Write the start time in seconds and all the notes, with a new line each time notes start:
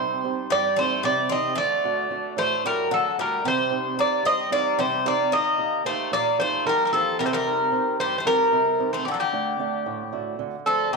Already playing: C3 G3 C4 D#4 G4 C5
0.24 C4 D#4 G4
0.50 G2 G3 D5
0.76 A3 C4 D#4 G4 C5
1.03 C3 G3 D5
1.29 C4 D#4 G4 D#5
1.55 D3 A3 D5
1.85 A3 D4 F#4
2.11 A3 D4 F#4
2.37 A2 A3 C5
2.64 G3 A3 D4 F#4 A#4
2.91 D3 F#3 A4
3.18 G3 A3 D4 F#4 A#4
3.44 C3 G3 C5
3.70 C4 D#4 G4
3.97 A#3 C4 D#4 G4 D5
4.23 G2 C4 D#5
4.50 A#3 C4 D#4 G4 D5
4.78 C3 G3 C5
5.06 A#3 C4 D#4 G4 D5
5.32 D#3 A#3 D#5
5.58 A#3 D#4 G4
5.85 A3 A#3 D#4 G4 C5
6.12 A#2 A#3 D5
6.39 A3 A#3 D#4 G4 C5
6.65 D#3 G3 A#4
6.85 G3 A#4
6.92 F3 A#3 D#4 G4 A4
7.19 C3 G3 A#4
7.26 A3 C5
7.33 G3 A#4
7.46 C4 D#4 G4
7.72 C4 D#4 G4
8.00 G2 G3 C5
8.18 A3 C5
8.25 G3 C4 D#4 G4 A#4
8.52 C3
8.80 C4 D#4 G4
8.93 A3 C5
9.05 D3 G4
9.11 F#3 A4
9.20 D3 G4
9.33 A3 D4 F#5
9.59 A3 D4 F#5
9.86 A2
10.12 A3 D4 F#4
10.39 D3
10.66 F3 A3 D4 F#4 A4
10.93 C3 D#3 G4